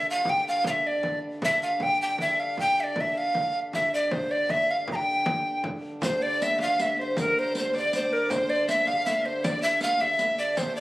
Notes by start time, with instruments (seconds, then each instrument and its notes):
Already playing: harmonium G2 D3
0.11 recorder F5
0.25 frame drum
0.30 recorder G5
0.45 recorder F5, frame drum
0.64 recorder F5, frame drum
0.70 recorder E5
0.83 recorder D5, frame drum
1.03 frame drum
1.22 frame drum
1.41 harmonium G2 D3, recorder E5, frame drum
1.63 recorder F5
1.80 recorder G5, frame drum
2.02 recorder G5
2.18 recorder E5, frame drum
2.40 recorder F5
2.57 recorder G5, frame drum
2.80 recorder D5 E5
2.96 frame drum
3.00 recorder E5
3.18 recorder F5
3.35 frame drum
3.73 recorder E5, frame drum
3.94 recorder D5
4.11 recorder C5, frame drum
4.31 recorder D5
4.49 recorder E5, frame drum
4.71 recorder F5
4.88 frame drum
4.92 recorder G5 A#5
5.07 frame drum
5.26 frame drum
5.64 frame drum
5.83 frame drum
6.02 harmonium G2 D3, fiddle C5, recorder C5, riq, frame drum
6.21 fiddle D5, recorder D5, frame drum
6.41 fiddle E5, recorder E5, riq
6.59 fiddle F5, recorder F5, riq, frame drum
6.80 fiddle E5, recorder E5, riq
6.99 fiddle C5, recorder C5
7.17 fiddle A#4, recorder A#4, riq, frame drum
7.36 recorder C5, frame drum
7.55 fiddle C5, recorder C5, riq
7.74 fiddle D5, riq, frame drum
7.78 recorder D5
7.93 recorder C5, riq
8.13 recorder A#4
8.30 fiddle C5, recorder C5, riq, frame drum
8.50 recorder D5, frame drum
8.68 fiddle E5, recorder E5, riq
8.86 fiddle F5, recorder F5, riq, frame drum
9.06 recorder E5, riq
9.25 fiddle C5, recorder C5
9.44 recorder D5, fiddle D5, riq, frame drum
9.62 fiddle E5, recorder E5, riq
9.81 fiddle F5, recorder F5, riq
10.00 fiddle E5, recorder E5, riq, frame drum
10.19 riq, frame drum
10.38 fiddle D5, recorder D5, riq, frame drum
10.57 harmonium G2 D3, fiddle C5, recorder C5, riq, frame drum
10.75 fiddle D5, recorder D5, frame drum